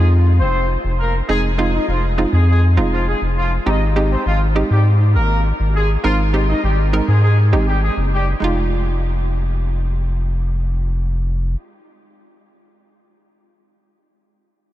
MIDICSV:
0, 0, Header, 1, 4, 480
1, 0, Start_track
1, 0, Key_signature, -4, "minor"
1, 0, Tempo, 594059
1, 1041, Time_signature, 4, 2, 24, 8
1, 11902, End_track
2, 0, Start_track
2, 0, Title_t, "Horn section"
2, 0, Program_c, 0, 61
2, 320, Note_on_c, 0, 72, 85
2, 327, Note_on_c, 0, 60, 70
2, 536, Note_off_c, 0, 72, 0
2, 539, Note_off_c, 0, 60, 0
2, 799, Note_on_c, 0, 70, 85
2, 805, Note_on_c, 0, 58, 62
2, 907, Note_off_c, 0, 70, 0
2, 911, Note_off_c, 0, 58, 0
2, 1038, Note_on_c, 0, 68, 106
2, 1045, Note_on_c, 0, 56, 81
2, 1147, Note_off_c, 0, 68, 0
2, 1151, Note_off_c, 0, 56, 0
2, 1399, Note_on_c, 0, 63, 92
2, 1406, Note_on_c, 0, 75, 70
2, 1507, Note_off_c, 0, 63, 0
2, 1511, Note_off_c, 0, 75, 0
2, 1519, Note_on_c, 0, 65, 79
2, 1525, Note_on_c, 0, 53, 66
2, 1627, Note_off_c, 0, 65, 0
2, 1631, Note_off_c, 0, 53, 0
2, 1878, Note_on_c, 0, 68, 77
2, 1885, Note_on_c, 0, 56, 61
2, 1987, Note_off_c, 0, 68, 0
2, 1991, Note_off_c, 0, 56, 0
2, 1999, Note_on_c, 0, 68, 83
2, 2005, Note_on_c, 0, 56, 65
2, 2108, Note_off_c, 0, 68, 0
2, 2111, Note_off_c, 0, 56, 0
2, 2360, Note_on_c, 0, 65, 82
2, 2368, Note_on_c, 0, 53, 62
2, 2468, Note_off_c, 0, 65, 0
2, 2472, Note_off_c, 0, 53, 0
2, 2481, Note_on_c, 0, 68, 82
2, 2487, Note_on_c, 0, 56, 64
2, 2589, Note_off_c, 0, 68, 0
2, 2592, Note_off_c, 0, 56, 0
2, 2722, Note_on_c, 0, 65, 87
2, 2728, Note_on_c, 0, 53, 70
2, 2829, Note_off_c, 0, 65, 0
2, 2832, Note_off_c, 0, 53, 0
2, 2961, Note_on_c, 0, 63, 106
2, 2968, Note_on_c, 0, 75, 85
2, 3069, Note_off_c, 0, 63, 0
2, 3072, Note_off_c, 0, 75, 0
2, 3320, Note_on_c, 0, 60, 87
2, 3327, Note_on_c, 0, 72, 67
2, 3428, Note_off_c, 0, 60, 0
2, 3432, Note_off_c, 0, 72, 0
2, 3440, Note_on_c, 0, 65, 89
2, 3446, Note_on_c, 0, 53, 69
2, 3548, Note_off_c, 0, 65, 0
2, 3551, Note_off_c, 0, 53, 0
2, 3799, Note_on_c, 0, 67, 79
2, 3806, Note_on_c, 0, 55, 60
2, 3908, Note_off_c, 0, 67, 0
2, 3911, Note_off_c, 0, 55, 0
2, 4158, Note_on_c, 0, 70, 91
2, 4164, Note_on_c, 0, 58, 67
2, 4374, Note_off_c, 0, 70, 0
2, 4378, Note_off_c, 0, 58, 0
2, 4638, Note_on_c, 0, 68, 83
2, 4645, Note_on_c, 0, 56, 63
2, 4747, Note_off_c, 0, 68, 0
2, 4751, Note_off_c, 0, 56, 0
2, 4877, Note_on_c, 0, 65, 107
2, 4884, Note_on_c, 0, 53, 80
2, 4986, Note_off_c, 0, 65, 0
2, 4990, Note_off_c, 0, 53, 0
2, 5239, Note_on_c, 0, 63, 93
2, 5245, Note_on_c, 0, 75, 74
2, 5347, Note_off_c, 0, 63, 0
2, 5350, Note_off_c, 0, 75, 0
2, 5360, Note_on_c, 0, 67, 80
2, 5367, Note_on_c, 0, 55, 66
2, 5468, Note_off_c, 0, 67, 0
2, 5472, Note_off_c, 0, 55, 0
2, 5718, Note_on_c, 0, 68, 77
2, 5724, Note_on_c, 0, 56, 61
2, 5827, Note_off_c, 0, 68, 0
2, 5830, Note_off_c, 0, 56, 0
2, 5837, Note_on_c, 0, 68, 80
2, 5844, Note_on_c, 0, 56, 62
2, 5946, Note_off_c, 0, 68, 0
2, 5950, Note_off_c, 0, 56, 0
2, 6199, Note_on_c, 0, 67, 79
2, 6205, Note_on_c, 0, 55, 63
2, 6307, Note_off_c, 0, 67, 0
2, 6311, Note_off_c, 0, 55, 0
2, 6320, Note_on_c, 0, 68, 76
2, 6326, Note_on_c, 0, 56, 59
2, 6428, Note_off_c, 0, 68, 0
2, 6431, Note_off_c, 0, 56, 0
2, 6562, Note_on_c, 0, 67, 88
2, 6568, Note_on_c, 0, 55, 67
2, 6669, Note_off_c, 0, 67, 0
2, 6673, Note_off_c, 0, 55, 0
2, 11902, End_track
3, 0, Start_track
3, 0, Title_t, "Synth pluck"
3, 0, Program_c, 1, 84
3, 0, Note_on_c, 1, 56, 78
3, 0, Note_on_c, 1, 60, 70
3, 0, Note_on_c, 1, 63, 71
3, 0, Note_on_c, 1, 65, 88
3, 371, Note_off_c, 1, 56, 0
3, 372, Note_off_c, 1, 60, 0
3, 372, Note_off_c, 1, 63, 0
3, 373, Note_off_c, 1, 65, 0
3, 1038, Note_on_c, 1, 56, 78
3, 1040, Note_on_c, 1, 60, 70
3, 1042, Note_on_c, 1, 63, 72
3, 1044, Note_on_c, 1, 68, 89
3, 1172, Note_off_c, 1, 56, 0
3, 1173, Note_off_c, 1, 60, 0
3, 1174, Note_off_c, 1, 63, 0
3, 1175, Note_off_c, 1, 68, 0
3, 1277, Note_on_c, 1, 56, 78
3, 1279, Note_on_c, 1, 60, 74
3, 1281, Note_on_c, 1, 63, 75
3, 1283, Note_on_c, 1, 65, 88
3, 1545, Note_off_c, 1, 56, 0
3, 1546, Note_off_c, 1, 60, 0
3, 1547, Note_off_c, 1, 63, 0
3, 1548, Note_off_c, 1, 65, 0
3, 1759, Note_on_c, 1, 56, 76
3, 1761, Note_on_c, 1, 60, 73
3, 1762, Note_on_c, 1, 63, 72
3, 1764, Note_on_c, 1, 65, 86
3, 2026, Note_off_c, 1, 56, 0
3, 2026, Note_off_c, 1, 60, 0
3, 2027, Note_off_c, 1, 63, 0
3, 2028, Note_off_c, 1, 65, 0
3, 2238, Note_on_c, 1, 56, 81
3, 2240, Note_on_c, 1, 60, 68
3, 2241, Note_on_c, 1, 63, 69
3, 2241, Note_on_c, 1, 65, 85
3, 2638, Note_off_c, 1, 56, 0
3, 2639, Note_off_c, 1, 60, 0
3, 2639, Note_off_c, 1, 65, 0
3, 2640, Note_off_c, 1, 63, 0
3, 2958, Note_on_c, 1, 56, 78
3, 2959, Note_on_c, 1, 60, 68
3, 2961, Note_on_c, 1, 63, 72
3, 2961, Note_on_c, 1, 67, 88
3, 3092, Note_off_c, 1, 56, 0
3, 3093, Note_off_c, 1, 60, 0
3, 3094, Note_off_c, 1, 63, 0
3, 3094, Note_off_c, 1, 67, 0
3, 3199, Note_on_c, 1, 56, 82
3, 3200, Note_on_c, 1, 60, 76
3, 3201, Note_on_c, 1, 63, 73
3, 3203, Note_on_c, 1, 67, 87
3, 3465, Note_off_c, 1, 56, 0
3, 3466, Note_off_c, 1, 60, 0
3, 3466, Note_off_c, 1, 63, 0
3, 3468, Note_off_c, 1, 67, 0
3, 3678, Note_on_c, 1, 56, 76
3, 3680, Note_on_c, 1, 60, 67
3, 3682, Note_on_c, 1, 63, 71
3, 3683, Note_on_c, 1, 67, 87
3, 4211, Note_off_c, 1, 56, 0
3, 4212, Note_off_c, 1, 60, 0
3, 4213, Note_off_c, 1, 63, 0
3, 4213, Note_off_c, 1, 67, 0
3, 4877, Note_on_c, 1, 56, 80
3, 4878, Note_on_c, 1, 60, 75
3, 4880, Note_on_c, 1, 63, 70
3, 4882, Note_on_c, 1, 70, 85
3, 5012, Note_off_c, 1, 56, 0
3, 5012, Note_off_c, 1, 60, 0
3, 5013, Note_off_c, 1, 63, 0
3, 5014, Note_off_c, 1, 70, 0
3, 5117, Note_on_c, 1, 56, 81
3, 5118, Note_on_c, 1, 60, 71
3, 5119, Note_on_c, 1, 63, 71
3, 5122, Note_on_c, 1, 67, 86
3, 5385, Note_off_c, 1, 56, 0
3, 5385, Note_off_c, 1, 60, 0
3, 5386, Note_off_c, 1, 63, 0
3, 5387, Note_off_c, 1, 67, 0
3, 5600, Note_on_c, 1, 56, 78
3, 5601, Note_on_c, 1, 60, 72
3, 5601, Note_on_c, 1, 63, 74
3, 5604, Note_on_c, 1, 70, 88
3, 5866, Note_off_c, 1, 56, 0
3, 5866, Note_off_c, 1, 60, 0
3, 5867, Note_off_c, 1, 63, 0
3, 5868, Note_off_c, 1, 70, 0
3, 6080, Note_on_c, 1, 56, 77
3, 6081, Note_on_c, 1, 60, 74
3, 6084, Note_on_c, 1, 63, 72
3, 6084, Note_on_c, 1, 67, 84
3, 6479, Note_off_c, 1, 56, 0
3, 6479, Note_off_c, 1, 60, 0
3, 6481, Note_off_c, 1, 63, 0
3, 6481, Note_off_c, 1, 67, 0
3, 6787, Note_on_c, 1, 56, 84
3, 6803, Note_on_c, 1, 63, 78
3, 6820, Note_on_c, 1, 65, 98
3, 9894, Note_off_c, 1, 56, 0
3, 9902, Note_off_c, 1, 63, 0
3, 9910, Note_off_c, 1, 65, 0
3, 11902, End_track
4, 0, Start_track
4, 0, Title_t, "Analog synth bass"
4, 0, Program_c, 2, 38
4, 0, Note_on_c, 2, 41, 94
4, 320, Note_on_c, 2, 29, 102
4, 332, Note_off_c, 2, 41, 0
4, 621, Note_off_c, 2, 29, 0
4, 680, Note_on_c, 2, 29, 87
4, 981, Note_off_c, 2, 29, 0
4, 1042, Note_on_c, 2, 29, 113
4, 1442, Note_off_c, 2, 29, 0
4, 1519, Note_on_c, 2, 29, 109
4, 1820, Note_off_c, 2, 29, 0
4, 1879, Note_on_c, 2, 41, 96
4, 2239, Note_on_c, 2, 29, 98
4, 2251, Note_off_c, 2, 41, 0
4, 2541, Note_off_c, 2, 29, 0
4, 2599, Note_on_c, 2, 29, 89
4, 2900, Note_off_c, 2, 29, 0
4, 2960, Note_on_c, 2, 32, 109
4, 3361, Note_off_c, 2, 32, 0
4, 3442, Note_on_c, 2, 32, 107
4, 3742, Note_off_c, 2, 32, 0
4, 3801, Note_on_c, 2, 44, 93
4, 4161, Note_on_c, 2, 32, 103
4, 4173, Note_off_c, 2, 44, 0
4, 4461, Note_off_c, 2, 32, 0
4, 4522, Note_on_c, 2, 32, 88
4, 4822, Note_off_c, 2, 32, 0
4, 4882, Note_on_c, 2, 32, 108
4, 5282, Note_off_c, 2, 32, 0
4, 5362, Note_on_c, 2, 32, 111
4, 5662, Note_off_c, 2, 32, 0
4, 5720, Note_on_c, 2, 44, 96
4, 6080, Note_on_c, 2, 32, 98
4, 6092, Note_off_c, 2, 44, 0
4, 6381, Note_off_c, 2, 32, 0
4, 6440, Note_on_c, 2, 30, 89
4, 6741, Note_off_c, 2, 30, 0
4, 6801, Note_on_c, 2, 29, 96
4, 9335, Note_off_c, 2, 29, 0
4, 11902, End_track
0, 0, End_of_file